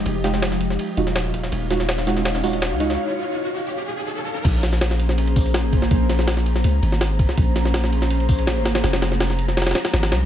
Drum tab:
CC |--------------------------------|--------------------------------|--------------------------------|x-------------------------------|
RD |x---x---x---x---x---x---x---x---|x---x---x---x---x-----x-x---x---|--------------------------------|x---x---x---x---x-x---x-x---x---|
HH |--------------------------------|--------------------o-----------|--------------------------------|--------------------o-----------|
SD |----o-o-o-o---o-------o-o-----o-|----o-o-o-o-o-o-o-o-----o-----o-|--------------------------------|----o-o-o-o---o---------o-----o-|
BD |o---------------------------o---|o-------------------o-------o---|--------------------------------|o-------------------o-------o---|

CC |--------------------------------|--------------------------------|--------------------------------|
RD |x---x---x---x---x---x---x---x---|x---x---x---x---x-x---x-x---x-x-|x-x-x---x---x---xxxxx-x-x-x-x---|
HH |--------------------------------|--------------------o-----------|--------------------------------|
SD |----o-o-o-o---o-------o-o-----o-|----o-o-o-o---o---------o---o-o-|o-o-o-o-o-o---o-ooooo-o-o-o-o---|
BD |o---------------------------o---|o-------------------o-----------|--------------------------------|